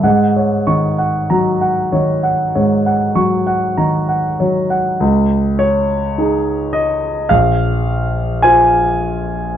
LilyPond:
<<
  \new Staff \with { instrumentName = "Grand piano" } { \time 4/4 \key des \major \tempo 4 = 50 ges''16 des''16 des'''16 ges''16 bes''16 ges''16 des''16 ges''16 des''16 ges''16 des'''16 ges''16 bes''16 ges''16 des''16 ges''16 | r8 des''4 ees''8 f''4 aes''4 | }
  \new Staff \with { instrumentName = "Grand piano" } { \clef bass \time 4/4 \key des \major aes,8 ees8 ges8 ees8 aes,8 ges8 ees8 ges8 | des,4 <ees' aes'>4 bes,,4 <f' c''>4 | }
>>